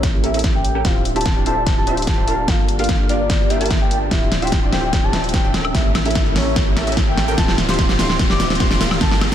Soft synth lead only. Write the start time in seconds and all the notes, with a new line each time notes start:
0.24 E5
0.55 G5
0.85 F5
1.16 A5
1.46 A5
1.77 A5
2.08 A5
2.48 F5
2.79 F5
3.09 D5
3.50 E5
3.81 G5
4.11 E5
4.42 G5
4.73 G5
5.04 A5
5.34 G5
5.75 E5
6.06 E5
6.36 C#5
6.77 E5
7.08 G5
7.38 A5
7.69 C6
7.99 C6
8.30 D6
8.60 C6
9.01 A5